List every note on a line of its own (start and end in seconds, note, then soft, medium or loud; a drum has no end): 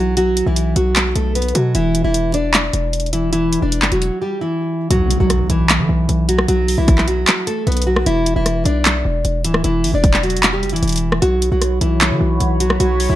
0.00 0.43 B1 loud
0.00 0.16 F#3 medium
0.00 0.15 F#4 medium
0.17 0.45 F#3 medium
0.17 0.45 F#4 loud
0.17 closed hi-hat medium
0.37 closed hi-hat medium
0.46 0.75 B1 loud
0.46 0.75 E3 medium
0.46 0.74 E4 medium
0.56 closed hi-hat medium
0.76 1.14 B1 loud
0.76 1.14 F#3 medium
0.76 1.13 F#4 medium
0.76 closed hi-hat medium
0.96 clap loud
0.96 closed hi-hat medium
1.16 1.53 B1 loud
1.16 1.34 A3 medium
1.16 1.34 A4 medium
1.16 closed hi-hat medium
1.35 1.54 B3 medium
1.35 1.54 B4 medium
1.35 closed hi-hat medium
1.42 closed hi-hat medium
1.48 closed hi-hat soft
1.55 1.74 B2 loud
1.55 1.74 F#3 medium
1.55 1.73 F#4 medium
1.55 closed hi-hat medium
1.75 2.03 E1 loud
1.75 2.03 E3 medium
1.75 2.03 E4 medium
1.75 closed hi-hat medium
1.95 closed hi-hat medium
2.04 2.71 E1 loud
2.04 2.33 E3 medium
2.04 2.32 E4 medium
2.14 closed hi-hat medium
2.34 3.09 D4 medium
2.34 3.09 D5 medium
2.34 closed hi-hat medium
2.54 clap loud
2.54 closed hi-hat medium
2.73 3.59 E1 loud
2.73 closed hi-hat medium
2.93 closed hi-hat medium
3.00 closed hi-hat medium
3.06 closed hi-hat soft
3.13 3.32 E3 medium
3.13 3.31 E4 medium
3.13 closed hi-hat medium
3.33 3.61 E3 medium
3.33 3.60 E4 medium
3.33 closed hi-hat medium
3.53 closed hi-hat medium
3.62 3.83 E1 loud
3.62 3.90 D4 medium
3.62 3.91 D5 medium
3.72 closed hi-hat medium
3.82 3.91 F#1 loud
3.82 clap medium
3.92 4.11 E1 loud
3.92 4.20 F#3 medium
3.92 4.20 F#4 medium
3.92 closed hi-hat medium
3.92 open hi-hat medium
4.02 closed hi-hat medium
4.22 4.40 G3 medium
4.22 4.40 G4 medium
4.41 4.88 E3 medium
4.41 4.88 E4 medium
4.90 5.19 B1 loud
4.90 5.19 F#3 medium
4.90 5.18 F#4 loud
4.90 closed hi-hat medium
4.90 impact medium
5.11 closed hi-hat medium
5.20 5.49 B1 loud
5.20 5.48 F#3 medium
5.20 5.48 F#4 medium
5.30 cross-stick medium
5.30 closed hi-hat medium
5.50 5.81 B1 loud
5.50 6.25 E3 medium
5.50 6.25 E4 medium
5.50 closed hi-hat medium
5.69 clap loud
5.69 closed hi-hat medium
5.79 5.89 D3 medium
5.89 6.08 B1 loud
6.09 6.47 B1 loud
6.09 closed hi-hat medium
6.29 6.47 F#3 medium
6.29 6.47 F#4 medium
6.29 closed hi-hat loud
6.39 cross-stick loud
6.48 6.77 B1 loud
6.48 6.77 F#3 medium
6.48 6.76 F#4 loud
6.48 closed hi-hat medium
6.68 open hi-hat medium
6.78 7.25 B1 loud
6.78 7.06 E3 medium
6.78 7.06 E4 medium
6.88 kick medium
6.88 cross-stick medium
6.88 closed hi-hat medium
6.98 clap medium
7.08 7.45 F#3 medium
7.08 7.45 F#4 medium
7.08 closed hi-hat medium
7.27 clap loud
7.27 closed hi-hat medium
7.47 7.66 A3 medium
7.47 7.65 A4 medium
7.47 closed hi-hat medium
7.67 8.05 B1 loud
7.67 7.86 B3 medium
7.67 7.85 B4 medium
7.67 closed hi-hat soft
7.72 closed hi-hat medium
7.77 closed hi-hat medium
7.82 closed hi-hat medium
7.87 8.05 F#3 medium
7.87 8.05 F#4 medium
7.96 cross-stick loud
8.06 8.35 E1 loud
8.06 8.35 E3 medium
8.06 8.34 E4 loud
8.06 closed hi-hat medium
8.26 closed hi-hat medium
8.36 8.64 E1 loud
8.36 8.64 E3 medium
8.36 8.64 E4 medium
8.46 cross-stick medium
8.46 closed hi-hat medium
8.65 9.03 B1 loud
8.65 9.40 D4 medium
8.65 9.41 D5 medium
8.65 closed hi-hat medium
8.85 clap loud
8.85 closed hi-hat medium
9.05 9.24 E1 loud
9.25 9.46 E1 loud
9.25 closed hi-hat medium
9.44 9.63 D1 medium
9.44 9.63 E3 medium
9.44 9.63 E4 medium
9.44 closed hi-hat loud
9.54 cross-stick loud
9.64 9.86 E1 loud
9.64 9.93 E3 medium
9.64 9.92 E4 loud
9.64 closed hi-hat medium
9.84 9.93 G1 loud
9.84 open hi-hat medium
9.94 10.64 E1 loud
9.94 10.22 D4 medium
9.94 10.22 D5 medium
10.04 kick medium
10.04 closed hi-hat medium
10.14 clap medium
10.23 10.52 F#3 medium
10.23 10.51 F#4 medium
10.23 closed hi-hat soft
10.30 closed hi-hat medium
10.37 closed hi-hat medium
10.43 clap loud
10.43 closed hi-hat medium
10.53 10.72 G3 medium
10.53 10.71 G4 medium
10.63 10.74 F#1 loud
10.63 closed hi-hat soft
10.69 10.82 E1 loud
10.69 11.19 E4 medium
10.69 closed hi-hat medium
10.73 11.20 E3 medium
10.73 closed hi-hat medium
10.83 11.21 E1 loud
10.83 closed hi-hat medium
10.88 closed hi-hat medium
10.89 closed hi-hat medium
10.92 closed hi-hat medium
10.96 closed hi-hat medium
10.97 closed hi-hat medium
11.12 cross-stick loud
11.22 11.51 B1 loud
11.22 11.50 F#3 medium
11.22 11.50 F#4 loud
11.22 13.15 F#4 medium
11.22 13.15 C#5 medium
11.22 13.15 B5 medium
11.22 closed hi-hat medium
11.42 closed hi-hat medium
11.52 11.80 B1 loud
11.52 11.80 F#3 medium
11.52 11.80 F#4 medium
11.62 cross-stick medium
11.62 closed hi-hat medium
11.81 12.12 B1 loud
11.81 12.57 E3 medium
11.81 12.56 E4 medium
11.81 closed hi-hat medium
12.01 clap loud
12.01 closed hi-hat medium
12.11 12.20 D3 loud
12.21 12.40 B1 loud
12.40 12.78 B1 loud
12.40 closed hi-hat medium
12.60 12.79 F#3 medium
12.60 12.79 F#4 medium
12.60 closed hi-hat medium
12.70 cross-stick loud
12.80 13.08 B1 loud
12.80 13.08 F#3 medium
12.80 13.08 F#4 loud
12.80 closed hi-hat medium
13.00 open hi-hat medium
13.10 13.15 B1 loud
13.10 13.15 E3 medium
13.10 13.15 E4 medium